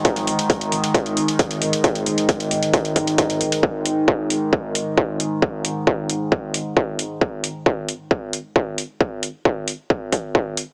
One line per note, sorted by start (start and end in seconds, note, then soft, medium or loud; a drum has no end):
0.00 7.26 G#2 medium
0.00 7.26 D#3 medium
0.05 kick loud
0.05 closed hi-hat medium
0.16 0.27 G#1 medium
0.16 closed hi-hat soft
0.27 0.39 G#1 loud
0.27 open hi-hat loud
0.39 closed hi-hat medium
0.50 kick loud
0.50 closed hi-hat medium
0.61 0.72 G#1 medium
0.61 closed hi-hat medium
0.72 0.83 G#1 loud
0.72 open hi-hat medium
0.84 closed hi-hat medium
0.94 kick loud
0.94 closed hi-hat medium
1.06 1.16 G#1 medium
1.06 closed hi-hat soft
1.17 1.28 G#1 loud
1.17 open hi-hat loud
1.28 closed hi-hat medium
1.39 kick loud
1.39 closed hi-hat medium
1.51 1.61 G#1 medium
1.51 closed hi-hat medium
1.62 1.73 G#1 medium
1.62 open hi-hat loud
1.73 closed hi-hat medium
1.84 kick loud
1.84 closed hi-hat medium
1.95 2.06 G#1 medium
1.95 closed hi-hat soft
2.06 2.18 G#1 loud
2.06 open hi-hat loud
2.18 closed hi-hat medium
2.29 kick loud
2.29 closed hi-hat medium
2.40 2.50 G#1 medium
2.40 closed hi-hat soft
2.51 2.62 G#1 loud
2.51 open hi-hat medium
2.63 closed hi-hat medium
2.74 kick loud
2.74 closed hi-hat medium
2.85 2.95 G#1 medium
2.85 closed hi-hat soft
2.96 3.07 G#1 loud
2.96 kick medium
2.96 open hi-hat loud
3.07 closed hi-hat soft
3.18 kick loud
3.18 closed hi-hat medium
3.30 3.40 G#1 medium
3.30 closed hi-hat medium
3.41 3.52 G#1 loud
3.41 open hi-hat medium
3.52 closed hi-hat medium
3.63 kick loud
3.86 open hi-hat loud
4.08 kick loud
4.30 open hi-hat medium
4.53 kick loud
4.75 open hi-hat loud
4.98 kick loud
5.20 open hi-hat medium
5.42 kick loud
5.65 open hi-hat loud
5.87 kick loud
6.10 open hi-hat medium
6.32 kick loud
6.54 open hi-hat medium
6.77 kick loud
6.99 open hi-hat medium
7.21 kick loud
7.44 open hi-hat loud
7.66 kick loud
7.89 open hi-hat medium
8.11 kick loud
8.33 open hi-hat medium
8.56 kick loud
8.78 open hi-hat medium
9.01 kick loud
9.23 open hi-hat loud
9.45 kick loud
9.68 open hi-hat medium
9.90 kick loud
10.12 kick medium
10.12 open hi-hat loud
10.35 kick loud
10.57 open hi-hat medium